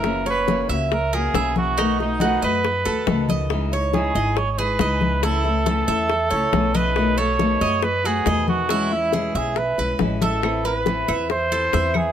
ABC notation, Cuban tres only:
X:1
M:4/4
L:1/8
Q:1/4=139
K:Bmix
V:1 name="Cuban tres"
e c2 e2 ^A e2 | D2 F d2 A2 d- | d c2 d2 G d2 | E2 A e2 c2 d- |
d A2 d2 F d2 | E2 G e2 B2 e- | e B2 e2 A e2 |]